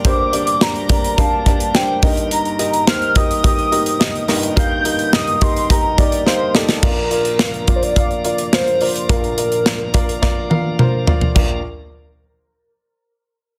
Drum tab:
CC |----------------|----------------|----------------|x---------------|
HH |x-xx-xxxx-xx--ox|xxxx-xxxxxxx-xox|x-xx-xxxx-xx----|--xx-xxxxxxx-xox|
SD |----o-------o---|----o-------o-o-|----o-------o-oo|----o-------o---|
T1 |----------------|----------------|----------------|----------------|
T2 |----------------|----------------|----------------|----------------|
FT |----------------|----------------|----------------|----------------|
BD |o-----o-o-o---o-|------o-o-------|o-----o-o-o-----|o-----o-o-------|

CC |----------------|x---------------|
HH |xxxx--xx--------|----------------|
SD |----o---o-------|----------------|
T1 |----------o-----|----------------|
T2 |------------o---|----------------|
FT |--------------oo|----------------|
BD |o-----o-o-------|o---------------|